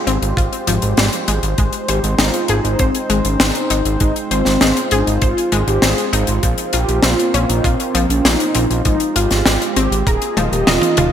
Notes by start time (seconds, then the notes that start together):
Already playing: G#3 F4 G4 C5
0.07 G#1 C4, closed hi-hat
0.22 G#1, closed hi-hat
0.37 G#1 F4, kick, closed hi-hat
0.53 closed hi-hat
0.67 G#1 F3, closed hi-hat
0.82 G#1, closed hi-hat
0.97 G#1 G3, snare, closed hi-hat
1.13 closed hi-hat
1.28 G#1 G#3, closed hi-hat
1.43 G#1, closed hi-hat
1.58 G#1 G#3 C4 D#4, kick, closed hi-hat
1.73 closed hi-hat
1.88 G#1 G4 C5, closed hi-hat
2.04 G#1, closed hi-hat
2.19 G#1 D#4 F4, snare, closed hi-hat
2.34 closed hi-hat
2.48 G#1 G#4, closed hi-hat
2.64 G#1 D#4, closed hi-hat
2.79 G#1 C4 C5, kick, closed hi-hat
2.95 closed hi-hat
3.10 G#1 G#3, closed hi-hat
3.25 G#1 C#4, closed hi-hat
3.40 G#1 C4 D#4, snare, closed hi-hat
3.55 closed hi-hat
3.70 G#1 D#4, closed hi-hat
3.85 G#1, closed hi-hat
4.00 G#1 G#3 D#4 F4, kick, closed hi-hat
4.16 closed hi-hat
4.31 G#1 C4 C5, closed hi-hat
4.45 G#1, snare, closed hi-hat
4.61 G#1 D#4, snare, closed hi-hat
4.77 closed hi-hat
4.91 G#1 D#4 G#4, closed hi-hat
5.07 G#1, closed hi-hat
5.22 G#1 F4 C5, kick, closed hi-hat
5.38 closed hi-hat
5.52 G#1 G#3, closed hi-hat
5.67 G#1 G4, closed hi-hat
5.82 G#1 C4 G#4, snare, closed hi-hat
5.98 closed hi-hat
6.13 G#1 D#4, closed hi-hat
6.27 G#1, closed hi-hat
6.43 A#1 F3 A#3 C4, kick, closed hi-hat
6.58 closed hi-hat
6.73 A#1 F4 G4, closed hi-hat
6.89 A#1, closed hi-hat
7.03 A#1 C4 F4, snare, closed hi-hat
7.19 closed hi-hat
7.34 A#1 C#4, closed hi-hat
7.49 A#1 D#4, closed hi-hat
7.64 A#1 C4 F4, kick, closed hi-hat
7.80 closed hi-hat
7.95 A#1 F3, closed hi-hat
8.10 A#1 C#4, closed hi-hat
8.25 A#1 A#3 D#4, snare, closed hi-hat
8.40 closed hi-hat
8.55 A#1 C4, closed hi-hat
8.70 A#1, closed hi-hat
8.85 G#1 F3 G#3 D#4 G4, kick, closed hi-hat
9.00 closed hi-hat
9.16 G#1 F4, closed hi-hat
9.31 G#1, snare, closed hi-hat
9.46 G#1 G#3, snare, closed hi-hat
9.62 closed hi-hat
9.76 G#1 C4 G4, closed hi-hat
9.91 G#1, closed hi-hat
10.07 D#1 A#3 D#4 F4 G#4 A#4 D#5, kick, closed hi-hat
10.22 closed hi-hat
10.37 D#1 F3, closed hi-hat, high tom
10.52 D#1 G4, closed hi-hat
10.67 D#1 F4 D#5, snare, closed hi-hat, mid tom
10.82 closed hi-hat, mid tom
10.97 D#1 F4, closed hi-hat, mid tom